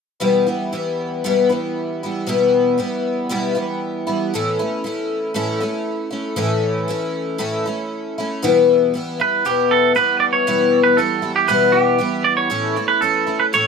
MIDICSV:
0, 0, Header, 1, 3, 480
1, 0, Start_track
1, 0, Tempo, 514139
1, 198, Time_signature, 4, 2, 24, 8
1, 6437, Tempo, 510204
1, 12812, End_track
2, 0, Start_track
2, 0, Title_t, "Clean electric guitar"
2, 0, Program_c, 0, 27
2, 8618, Note_on_c, 0, 71, 90
2, 8836, Note_off_c, 0, 71, 0
2, 8850, Note_on_c, 0, 67, 77
2, 9087, Note_on_c, 0, 69, 83
2, 9095, Note_off_c, 0, 67, 0
2, 9316, Note_off_c, 0, 69, 0
2, 9319, Note_on_c, 0, 71, 89
2, 9542, Note_off_c, 0, 71, 0
2, 9546, Note_on_c, 0, 74, 91
2, 9593, Note_off_c, 0, 74, 0
2, 9666, Note_on_c, 0, 73, 92
2, 10140, Note_off_c, 0, 73, 0
2, 10144, Note_on_c, 0, 71, 85
2, 10271, Note_on_c, 0, 69, 79
2, 10279, Note_off_c, 0, 71, 0
2, 10632, Note_off_c, 0, 69, 0
2, 10635, Note_on_c, 0, 67, 81
2, 10752, Note_on_c, 0, 71, 86
2, 10764, Note_off_c, 0, 67, 0
2, 10978, Note_on_c, 0, 67, 82
2, 11006, Note_off_c, 0, 71, 0
2, 11470, Note_on_c, 0, 74, 90
2, 11485, Note_off_c, 0, 67, 0
2, 11582, Note_off_c, 0, 74, 0
2, 11586, Note_on_c, 0, 73, 96
2, 12040, Note_off_c, 0, 73, 0
2, 12067, Note_on_c, 0, 71, 78
2, 12186, Note_off_c, 0, 71, 0
2, 12189, Note_on_c, 0, 69, 80
2, 12553, Note_on_c, 0, 71, 79
2, 12566, Note_off_c, 0, 69, 0
2, 12600, Note_off_c, 0, 71, 0
2, 12688, Note_on_c, 0, 73, 92
2, 12812, Note_off_c, 0, 73, 0
2, 12812, End_track
3, 0, Start_track
3, 0, Title_t, "Twelve-string acoustic guitar"
3, 0, Program_c, 1, 25
3, 187, Note_on_c, 1, 40, 64
3, 189, Note_on_c, 1, 47, 71
3, 195, Note_on_c, 1, 52, 78
3, 200, Note_on_c, 1, 55, 83
3, 200, Note_on_c, 1, 59, 71
3, 205, Note_on_c, 1, 64, 76
3, 424, Note_off_c, 1, 64, 0
3, 433, Note_off_c, 1, 40, 0
3, 434, Note_off_c, 1, 47, 0
3, 434, Note_off_c, 1, 59, 0
3, 435, Note_on_c, 1, 64, 49
3, 436, Note_off_c, 1, 55, 0
3, 437, Note_off_c, 1, 52, 0
3, 445, Note_on_c, 1, 59, 49
3, 448, Note_on_c, 1, 55, 44
3, 457, Note_on_c, 1, 52, 43
3, 666, Note_off_c, 1, 52, 0
3, 670, Note_off_c, 1, 55, 0
3, 677, Note_off_c, 1, 59, 0
3, 677, Note_on_c, 1, 52, 62
3, 678, Note_off_c, 1, 64, 0
3, 681, Note_on_c, 1, 55, 53
3, 688, Note_on_c, 1, 59, 59
3, 701, Note_on_c, 1, 64, 63
3, 1159, Note_on_c, 1, 40, 74
3, 1162, Note_off_c, 1, 55, 0
3, 1163, Note_on_c, 1, 47, 74
3, 1165, Note_off_c, 1, 59, 0
3, 1168, Note_off_c, 1, 52, 0
3, 1172, Note_on_c, 1, 52, 78
3, 1175, Note_off_c, 1, 64, 0
3, 1175, Note_on_c, 1, 55, 66
3, 1176, Note_on_c, 1, 59, 77
3, 1179, Note_on_c, 1, 64, 79
3, 1383, Note_off_c, 1, 64, 0
3, 1390, Note_off_c, 1, 59, 0
3, 1394, Note_on_c, 1, 64, 52
3, 1400, Note_off_c, 1, 40, 0
3, 1401, Note_on_c, 1, 59, 48
3, 1402, Note_off_c, 1, 47, 0
3, 1407, Note_off_c, 1, 52, 0
3, 1408, Note_off_c, 1, 55, 0
3, 1419, Note_on_c, 1, 55, 44
3, 1422, Note_on_c, 1, 52, 39
3, 1882, Note_off_c, 1, 59, 0
3, 1891, Note_off_c, 1, 55, 0
3, 1894, Note_off_c, 1, 64, 0
3, 1898, Note_on_c, 1, 64, 51
3, 1903, Note_on_c, 1, 59, 46
3, 1915, Note_on_c, 1, 55, 44
3, 1920, Note_off_c, 1, 52, 0
3, 1924, Note_on_c, 1, 52, 45
3, 2116, Note_on_c, 1, 40, 71
3, 2117, Note_off_c, 1, 52, 0
3, 2121, Note_on_c, 1, 47, 72
3, 2122, Note_off_c, 1, 55, 0
3, 2126, Note_off_c, 1, 64, 0
3, 2128, Note_on_c, 1, 52, 68
3, 2129, Note_off_c, 1, 59, 0
3, 2133, Note_on_c, 1, 55, 78
3, 2137, Note_on_c, 1, 64, 77
3, 2140, Note_on_c, 1, 59, 74
3, 2588, Note_off_c, 1, 52, 0
3, 2589, Note_off_c, 1, 55, 0
3, 2592, Note_on_c, 1, 52, 55
3, 2598, Note_off_c, 1, 59, 0
3, 2600, Note_off_c, 1, 40, 0
3, 2600, Note_on_c, 1, 55, 53
3, 2603, Note_off_c, 1, 47, 0
3, 2608, Note_off_c, 1, 64, 0
3, 2609, Note_on_c, 1, 59, 58
3, 2612, Note_on_c, 1, 64, 64
3, 3075, Note_on_c, 1, 40, 76
3, 3076, Note_off_c, 1, 55, 0
3, 3081, Note_off_c, 1, 59, 0
3, 3083, Note_on_c, 1, 47, 76
3, 3084, Note_off_c, 1, 52, 0
3, 3088, Note_on_c, 1, 52, 72
3, 3088, Note_on_c, 1, 55, 77
3, 3092, Note_on_c, 1, 59, 78
3, 3093, Note_off_c, 1, 64, 0
3, 3097, Note_on_c, 1, 64, 90
3, 3301, Note_off_c, 1, 64, 0
3, 3312, Note_on_c, 1, 64, 54
3, 3313, Note_off_c, 1, 59, 0
3, 3319, Note_off_c, 1, 55, 0
3, 3320, Note_off_c, 1, 40, 0
3, 3324, Note_off_c, 1, 47, 0
3, 3324, Note_on_c, 1, 59, 52
3, 3326, Note_off_c, 1, 52, 0
3, 3330, Note_on_c, 1, 55, 46
3, 3343, Note_on_c, 1, 52, 38
3, 3789, Note_off_c, 1, 59, 0
3, 3794, Note_off_c, 1, 64, 0
3, 3797, Note_off_c, 1, 55, 0
3, 3798, Note_on_c, 1, 64, 52
3, 3800, Note_on_c, 1, 59, 44
3, 3808, Note_on_c, 1, 55, 42
3, 3813, Note_off_c, 1, 52, 0
3, 3817, Note_on_c, 1, 52, 45
3, 4041, Note_off_c, 1, 64, 0
3, 4042, Note_off_c, 1, 59, 0
3, 4046, Note_off_c, 1, 55, 0
3, 4048, Note_on_c, 1, 45, 67
3, 4050, Note_off_c, 1, 52, 0
3, 4059, Note_on_c, 1, 57, 81
3, 4062, Note_on_c, 1, 52, 82
3, 4068, Note_on_c, 1, 61, 76
3, 4068, Note_on_c, 1, 64, 83
3, 4276, Note_off_c, 1, 64, 0
3, 4283, Note_off_c, 1, 61, 0
3, 4286, Note_off_c, 1, 45, 0
3, 4287, Note_on_c, 1, 64, 51
3, 4292, Note_off_c, 1, 57, 0
3, 4293, Note_off_c, 1, 52, 0
3, 4294, Note_on_c, 1, 61, 46
3, 4310, Note_on_c, 1, 57, 43
3, 4519, Note_on_c, 1, 52, 58
3, 4521, Note_off_c, 1, 57, 0
3, 4526, Note_off_c, 1, 64, 0
3, 4529, Note_off_c, 1, 61, 0
3, 4532, Note_on_c, 1, 57, 54
3, 4542, Note_on_c, 1, 61, 63
3, 4544, Note_on_c, 1, 64, 65
3, 4988, Note_off_c, 1, 57, 0
3, 4988, Note_on_c, 1, 45, 69
3, 4990, Note_off_c, 1, 61, 0
3, 4994, Note_off_c, 1, 52, 0
3, 4997, Note_on_c, 1, 52, 80
3, 4999, Note_on_c, 1, 57, 74
3, 5001, Note_on_c, 1, 61, 85
3, 5002, Note_off_c, 1, 64, 0
3, 5005, Note_on_c, 1, 64, 82
3, 5221, Note_off_c, 1, 64, 0
3, 5230, Note_off_c, 1, 61, 0
3, 5232, Note_on_c, 1, 64, 54
3, 5235, Note_off_c, 1, 45, 0
3, 5240, Note_off_c, 1, 52, 0
3, 5241, Note_off_c, 1, 57, 0
3, 5242, Note_on_c, 1, 61, 55
3, 5258, Note_on_c, 1, 57, 48
3, 5697, Note_off_c, 1, 64, 0
3, 5701, Note_on_c, 1, 64, 50
3, 5706, Note_off_c, 1, 61, 0
3, 5711, Note_off_c, 1, 57, 0
3, 5717, Note_on_c, 1, 61, 45
3, 5723, Note_on_c, 1, 57, 43
3, 5935, Note_off_c, 1, 61, 0
3, 5937, Note_off_c, 1, 57, 0
3, 5939, Note_on_c, 1, 45, 78
3, 5939, Note_on_c, 1, 52, 79
3, 5945, Note_off_c, 1, 64, 0
3, 5946, Note_on_c, 1, 61, 73
3, 5949, Note_on_c, 1, 57, 75
3, 5956, Note_on_c, 1, 64, 86
3, 6410, Note_off_c, 1, 52, 0
3, 6421, Note_on_c, 1, 52, 53
3, 6422, Note_off_c, 1, 57, 0
3, 6429, Note_off_c, 1, 45, 0
3, 6432, Note_off_c, 1, 61, 0
3, 6433, Note_on_c, 1, 57, 58
3, 6434, Note_off_c, 1, 64, 0
3, 6445, Note_on_c, 1, 64, 65
3, 6446, Note_on_c, 1, 61, 62
3, 6890, Note_off_c, 1, 52, 0
3, 6894, Note_off_c, 1, 57, 0
3, 6897, Note_on_c, 1, 45, 70
3, 6901, Note_off_c, 1, 64, 0
3, 6901, Note_on_c, 1, 52, 73
3, 6902, Note_off_c, 1, 61, 0
3, 6905, Note_on_c, 1, 57, 71
3, 6912, Note_on_c, 1, 64, 77
3, 6913, Note_on_c, 1, 61, 68
3, 7142, Note_off_c, 1, 64, 0
3, 7150, Note_off_c, 1, 45, 0
3, 7152, Note_off_c, 1, 52, 0
3, 7153, Note_on_c, 1, 64, 46
3, 7154, Note_off_c, 1, 57, 0
3, 7158, Note_off_c, 1, 61, 0
3, 7168, Note_on_c, 1, 61, 53
3, 7182, Note_on_c, 1, 57, 39
3, 7635, Note_off_c, 1, 64, 0
3, 7646, Note_off_c, 1, 61, 0
3, 7646, Note_on_c, 1, 64, 51
3, 7654, Note_off_c, 1, 57, 0
3, 7661, Note_on_c, 1, 61, 51
3, 7669, Note_on_c, 1, 57, 42
3, 7876, Note_on_c, 1, 40, 75
3, 7879, Note_on_c, 1, 47, 79
3, 7884, Note_off_c, 1, 64, 0
3, 7887, Note_off_c, 1, 61, 0
3, 7888, Note_off_c, 1, 57, 0
3, 7889, Note_on_c, 1, 52, 87
3, 7891, Note_on_c, 1, 59, 80
3, 7892, Note_on_c, 1, 55, 85
3, 7895, Note_on_c, 1, 64, 88
3, 8354, Note_off_c, 1, 52, 0
3, 8358, Note_on_c, 1, 52, 61
3, 8359, Note_off_c, 1, 59, 0
3, 8361, Note_off_c, 1, 40, 0
3, 8363, Note_off_c, 1, 47, 0
3, 8363, Note_off_c, 1, 55, 0
3, 8371, Note_on_c, 1, 59, 63
3, 8374, Note_on_c, 1, 55, 62
3, 8383, Note_off_c, 1, 64, 0
3, 8387, Note_on_c, 1, 64, 72
3, 8589, Note_off_c, 1, 64, 0
3, 8597, Note_off_c, 1, 55, 0
3, 8599, Note_off_c, 1, 59, 0
3, 8600, Note_on_c, 1, 64, 46
3, 8602, Note_off_c, 1, 52, 0
3, 8609, Note_on_c, 1, 55, 35
3, 8610, Note_on_c, 1, 59, 38
3, 8626, Note_on_c, 1, 52, 34
3, 8836, Note_off_c, 1, 52, 0
3, 8836, Note_off_c, 1, 55, 0
3, 8839, Note_off_c, 1, 59, 0
3, 8840, Note_on_c, 1, 40, 66
3, 8843, Note_off_c, 1, 64, 0
3, 8843, Note_on_c, 1, 47, 75
3, 8847, Note_on_c, 1, 52, 72
3, 8848, Note_on_c, 1, 55, 69
3, 8850, Note_on_c, 1, 59, 73
3, 8857, Note_on_c, 1, 64, 73
3, 9305, Note_off_c, 1, 52, 0
3, 9309, Note_off_c, 1, 55, 0
3, 9309, Note_on_c, 1, 52, 52
3, 9313, Note_off_c, 1, 59, 0
3, 9320, Note_on_c, 1, 55, 53
3, 9323, Note_off_c, 1, 40, 0
3, 9324, Note_off_c, 1, 47, 0
3, 9324, Note_on_c, 1, 59, 65
3, 9326, Note_off_c, 1, 64, 0
3, 9330, Note_on_c, 1, 64, 54
3, 9794, Note_off_c, 1, 55, 0
3, 9798, Note_off_c, 1, 59, 0
3, 9800, Note_on_c, 1, 40, 69
3, 9801, Note_off_c, 1, 52, 0
3, 9801, Note_on_c, 1, 47, 78
3, 9804, Note_on_c, 1, 52, 68
3, 9805, Note_on_c, 1, 55, 75
3, 9808, Note_off_c, 1, 64, 0
3, 9809, Note_on_c, 1, 59, 69
3, 9812, Note_on_c, 1, 64, 76
3, 10276, Note_off_c, 1, 52, 0
3, 10276, Note_off_c, 1, 55, 0
3, 10276, Note_off_c, 1, 59, 0
3, 10280, Note_on_c, 1, 52, 53
3, 10283, Note_off_c, 1, 40, 0
3, 10283, Note_off_c, 1, 47, 0
3, 10287, Note_on_c, 1, 55, 58
3, 10287, Note_on_c, 1, 59, 62
3, 10295, Note_off_c, 1, 64, 0
3, 10298, Note_on_c, 1, 64, 60
3, 10495, Note_off_c, 1, 64, 0
3, 10497, Note_off_c, 1, 59, 0
3, 10506, Note_on_c, 1, 64, 47
3, 10507, Note_off_c, 1, 55, 0
3, 10509, Note_on_c, 1, 59, 40
3, 10517, Note_off_c, 1, 52, 0
3, 10518, Note_on_c, 1, 55, 39
3, 10528, Note_on_c, 1, 52, 35
3, 10745, Note_off_c, 1, 52, 0
3, 10747, Note_on_c, 1, 40, 63
3, 10751, Note_off_c, 1, 55, 0
3, 10751, Note_off_c, 1, 59, 0
3, 10755, Note_off_c, 1, 64, 0
3, 10756, Note_on_c, 1, 47, 79
3, 10757, Note_on_c, 1, 52, 72
3, 10762, Note_on_c, 1, 55, 72
3, 10762, Note_on_c, 1, 59, 84
3, 10770, Note_on_c, 1, 64, 78
3, 11222, Note_off_c, 1, 52, 0
3, 11222, Note_off_c, 1, 55, 0
3, 11226, Note_on_c, 1, 52, 58
3, 11228, Note_off_c, 1, 59, 0
3, 11233, Note_on_c, 1, 55, 55
3, 11235, Note_off_c, 1, 40, 0
3, 11239, Note_off_c, 1, 47, 0
3, 11239, Note_on_c, 1, 59, 52
3, 11244, Note_off_c, 1, 64, 0
3, 11248, Note_on_c, 1, 64, 65
3, 11707, Note_off_c, 1, 52, 0
3, 11708, Note_on_c, 1, 45, 73
3, 11711, Note_on_c, 1, 52, 67
3, 11712, Note_off_c, 1, 55, 0
3, 11716, Note_on_c, 1, 57, 75
3, 11718, Note_off_c, 1, 59, 0
3, 11719, Note_off_c, 1, 64, 0
3, 11722, Note_on_c, 1, 61, 76
3, 11723, Note_on_c, 1, 64, 84
3, 11947, Note_off_c, 1, 64, 0
3, 11955, Note_off_c, 1, 45, 0
3, 11955, Note_off_c, 1, 61, 0
3, 11957, Note_off_c, 1, 52, 0
3, 11958, Note_on_c, 1, 64, 48
3, 11959, Note_off_c, 1, 57, 0
3, 11966, Note_on_c, 1, 61, 44
3, 11982, Note_on_c, 1, 57, 39
3, 12188, Note_off_c, 1, 57, 0
3, 12198, Note_off_c, 1, 61, 0
3, 12198, Note_on_c, 1, 52, 58
3, 12199, Note_on_c, 1, 57, 54
3, 12200, Note_off_c, 1, 64, 0
3, 12209, Note_on_c, 1, 61, 60
3, 12219, Note_on_c, 1, 64, 61
3, 12421, Note_off_c, 1, 64, 0
3, 12430, Note_off_c, 1, 61, 0
3, 12432, Note_on_c, 1, 64, 42
3, 12440, Note_off_c, 1, 52, 0
3, 12441, Note_off_c, 1, 57, 0
3, 12441, Note_on_c, 1, 61, 39
3, 12454, Note_on_c, 1, 57, 35
3, 12677, Note_off_c, 1, 57, 0
3, 12677, Note_off_c, 1, 64, 0
3, 12678, Note_on_c, 1, 45, 70
3, 12681, Note_off_c, 1, 61, 0
3, 12685, Note_on_c, 1, 52, 74
3, 12688, Note_on_c, 1, 57, 77
3, 12693, Note_on_c, 1, 64, 73
3, 12695, Note_on_c, 1, 61, 72
3, 12812, Note_off_c, 1, 45, 0
3, 12812, Note_off_c, 1, 52, 0
3, 12812, Note_off_c, 1, 57, 0
3, 12812, Note_off_c, 1, 61, 0
3, 12812, Note_off_c, 1, 64, 0
3, 12812, End_track
0, 0, End_of_file